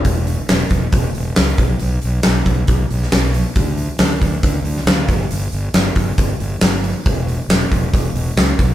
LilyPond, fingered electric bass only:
\new Staff \with { instrumentName = "Fingered electric bass" } { \clef bass \time 4/4 \key b \dorian \tempo 4 = 137 e,,4 e,,8 e,,8 e,,8 e,,8 cis,8 b,,8 | b,,8 b,,8 b,,8 b,,8 b,,8 b,,8 b,,4 | d,4 d,8 d,8 d,8 d,8 d,8 g,,8 | g,,8 g,,8 g,,8 g,,8 g,,8 g,,8 g,,4 |
e,,4 e,,8 e,,8 e,,8 e,,8 cis,8 b,,8 | }